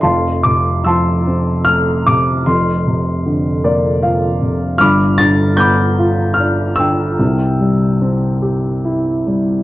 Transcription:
<<
  \new Staff \with { instrumentName = "Upright piano" } { \time 3/4 \key f \major \tempo 4 = 74 << { c'''8 d'''8 e'''4 f'''8 d'''8 | c'''2~ c'''8 r8 | f'''8 a'''8 g'''4 f'''8 e'''8~ | e'''2~ e'''8 r8 | } \\ { <f'' a''>4 <a'' c'''>4. r8 | r4. d''8 f''4 | <b'' d'''>4 <b'' d'''>4. g''8~ | g''2~ g''8 r8 | } >> }
  \new Staff \with { instrumentName = "Upright piano" } { \clef bass \time 3/4 \key f \major <f,, f,>8 c8 f8 c'8 a8 c8 | <f,, f,>8 c8 d8 bes8 f8 c8 | <g,, g,>8 d8 b8 f'8 d'8 d8 | <c, c>8 g8 c'8 g'8 e'8 g8 | }
>>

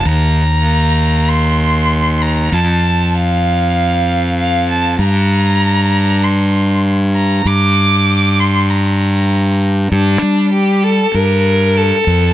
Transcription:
<<
  \new Staff \with { instrumentName = "Violin" } { \time 4/4 \key g \minor \tempo 4 = 97 bes''2 c'''4. bes''8 | a''4 f''2 f''8 a''8 | bes''2 c'''4 r8 bes''8 | d'''4. c'''8 bes''4. r8 |
d'4 g'8 a'8 bes'4 a'4 | }
  \new Staff \with { instrumentName = "Fingered electric bass" } { \clef bass \time 4/4 \key g \minor ees,1 | f,1 | g,1 | g,1 |
g,8 g4. g,4. f,8 | }
>>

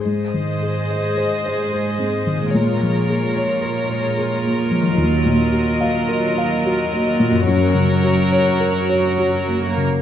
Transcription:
<<
  \new Staff \with { instrumentName = "Violin section" } { \time 3/4 \key aes \mixolydian \tempo 4 = 72 << { ees''2. | des''2. | ees''2. | des''2~ des''8. r16 | } \\ { c''2. | bes'2.~ | bes'2. | bes'2~ bes'8. r16 | } >> }
  \new Staff \with { instrumentName = "Felt piano" } { \time 3/4 \key aes \mixolydian \tuplet 3/2 { aes,8 ees8 aes'8 ees''8 c''8 ees''8 aes'8 c'8 ees8 } | \tuplet 3/2 { bes,8 f8 aes'8 des''8 bes'8 des''8 aes'8 bes8 f8 } | \tuplet 3/2 { ees,8 bes,8 ges'8 f''8 bes'8 f''8 ges'8 bes8 bes,8 } | \tuplet 3/2 { ges,8 des8 ges'8 des''8 bes'8 des''8 ges'8 bes8 des8 } | }
  \new Staff \with { instrumentName = "Viola section" } { \time 3/4 \key aes \mixolydian << { aes'2. | f'2.~ | f'2. | ges'2~ ges'8 bes8 | } \\ { aes2.~ | aes2. | ges2.~ | ges2~ ges8 r8 | } >> }
  \new Staff \with { instrumentName = "Harp" } { \time 3/4 \key aes \mixolydian <aes, aes aes' c''>2. | <bes, aes f' des''>2. | <ees ges f' bes'>2. | <ges, ges ges' bes'>2. | }
  \new Staff \with { instrumentName = "Cello section" } { \clef bass \time 3/4 \key aes \mixolydian aes,2. | bes,2. | ees,2. | ges,2~ ges,8. r16 | }
>>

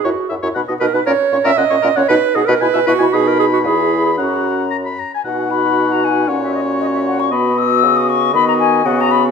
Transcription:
<<
  \new Staff \with { instrumentName = "Flute" } { \time 2/4 \key b \major \tempo 4 = 116 e''16 r16 fis''16 e''16 b''16 fis''16 dis''16 b''16 | ais'16 r16 cis''16 ais'16 fis''16 cis''16 ais'16 fis''16 | dis''16 r16 fis''16 dis''16 b''16 gis''16 e''16 b''16 | b''4 b''4 |
ais''4. r16 gis''16 | fis''8 b''8. ais''16 gis''8 | fis''16 e''16 dis''8 dis''16 e''16 fis''16 cis'''16 | b''8 e'''8. dis'''16 cis'''8 |
b''16 ais''16 gis''8 fis''16 ais''16 b''16 r16 | }
  \new Staff \with { instrumentName = "Oboe" } { \time 2/4 \key b \major cis''16 r16 e''16 cis''16 fis''16 dis''16 b'16 fis''16 | ais'16 r16 cis''16 ais'16 fis''16 cis''16 ais'16 fis''16 | b'16 r16 dis''16 b'16 gis''16 e''16 b'16 gis''16 | b''4 b''4 |
fis''4 ais''16 b''16 ais''16 gis''16 | fis''2 | cis''2 | dis''2 |
dis''4 dis''4 | }
  \new Staff \with { instrumentName = "Clarinet" } { \time 2/4 \key b \major fis'8 r4 ais'16 b'16 | cis''8. e''16 dis''8. cis''16 | \tuplet 3/2 { b'8. gis'16 ais'8 } b'8 fis'8 | gis'16 ais'16 gis'16 fis'16 gis'8. gis'16 |
fis'4 r4 | fis'2 | fis'2 | fis'2 |
fis'4 fis'4 | }
  \new Staff \with { instrumentName = "French horn" } { \time 2/4 \key b \major e'16 r16 e'16 e'16 dis'16 dis'16 dis'16 dis'16 | cis'16 r16 cis'16 cis'16 cis'16 cis'16 cis'16 cis'16 | dis'16 r16 dis'16 dis'16 e'16 e'16 e'16 e'16 | dis'4 e'4 |
cis'4. r8 | dis'2 | cis'2 | b2 |
b4 b4 | }
  \new Staff \with { instrumentName = "Bassoon" } { \clef bass \time 2/4 \key b \major fis,16 r16 fis,16 fis,16 b,16 b,16 b,16 b,16 | ais,16 r16 ais,16 ais,16 ais,16 ais,16 ais,16 ais,16 | b,16 r16 b,16 b,16 b,16 b,16 b,16 b,16 | b,4 e,4 |
fis,4. r8 | b,2 | ais,2 | b,4 cis4 |
dis4 cis4 | }
>>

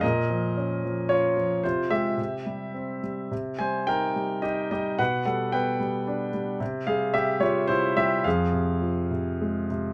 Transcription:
<<
  \new Staff \with { instrumentName = "Grand piano" } { \time 3/4 \key c \phrygian \tempo 4 = 108 <bes' ees''>2 <f' des''>4 | <f' c''>8 <g' e''>2 r8 | r8 <c'' aes''>8 <bes' g''>4 <g' ees''>8 <g' ees''>8 | <b' ges''>8 <a' ges''>8 <b' g''>4. r8 |
r8 <aes' f''>8 <g' e''>8 <f' des''>8 <e' c''>8 <g' e''>8 | <aes' f''>2~ <aes' f''>8 r8 | }
  \new Staff \with { instrumentName = "Grand piano" } { \clef bass \time 3/4 \key c \phrygian bes,8 f8 des'8 f8 des'8 f8 | c8 aes8 c8 g8 c'8 g8 | c8 g8 ees'8 g8 ees'8 g8 | b,8 g8 b8 g8 d'8 g8 |
c8 g8 c8 g8 c8 g8 | f,8 c8 f8 c8 aes8 c8 | }
>>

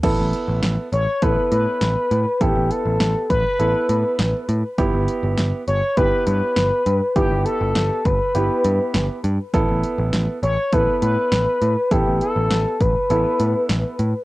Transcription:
<<
  \new Staff \with { instrumentName = "Analog synth lead" } { \time 4/4 \key a \mixolydian \tempo 4 = 101 r4. cis''8 b'8 b'4. | g'8 a'4 b'2 r8 | r4. cis''8 b'8 b'4. | g'8 a'4 b'2 r8 |
r4. cis''8 b'8 b'4. | g'8 a'4 b'2 r8 | }
  \new Staff \with { instrumentName = "Grand piano" } { \time 4/4 \key a \mixolydian <b e' a'>4. r8 <b e' a'>4. r8 | <b e' a'>4. r8 <b e' a'>4. r8 | <b e' g'>4. r8 <b e' g'>4. r8 | <b e' g'>4. r8 <b e' g'>4. r8 |
<b e' a'>4. r8 <b e' a'>4. r8 | <b e' a'>4. r8 <b e' a'>4. r8 | }
  \new Staff \with { instrumentName = "Picked electric bass" } { \clef bass \time 4/4 \key a \mixolydian a,,16 a,,16 r16 a,,16 a,,16 r16 a,,16 r16 a,,16 r16 a,16 r16 a,,16 r16 a,16 r16 | a,,16 a,,16 r16 a,,16 a,,16 r16 a,,16 r16 a,,16 r16 a,16 r16 a,,16 r16 a,16 r16 | g,,16 g,,16 r16 g,,16 g,,16 r16 g,,16 r16 g,,16 r16 g,16 r16 g,,16 r16 g,16 r16 | g,,16 g,,16 r16 g,,16 g,,16 r16 g,,16 r16 g,,16 r16 g,16 r16 g,,16 r16 g,16 r16 |
a,,16 a,,16 r16 a,,16 a,,16 r16 a,,16 r16 a,,16 r16 a,16 r16 a,,16 r16 a,16 r16 | a,,16 a,,16 r16 a,,16 a,,16 r16 a,,16 r16 a,,16 r16 a,16 r16 a,,16 r16 a,16 r16 | }
  \new DrumStaff \with { instrumentName = "Drums" } \drummode { \time 4/4 <cymc hh bd>8 hh8 <hh sn>8 hh8 <hh bd>8 hh8 <hh sn>8 hh8 | <hh bd>8 hh8 <hh sn>8 <hh bd>8 hh8 hh8 <hh sn>8 hh8 | <hh bd>8 hh8 <hh sn>8 hh8 <hh bd>8 hh8 <hh sn>8 hh8 | <hh bd>8 hh8 <hh sn>8 <hh bd>8 hh8 hh8 <hh sn>8 hh8 |
<hh bd>8 hh8 <hh sn>8 hh8 <hh bd>8 hh8 <hh sn>8 hh8 | <hh bd>8 hh8 <hh sn>8 <hh bd>8 hh8 hh8 <hh sn>8 hh8 | }
>>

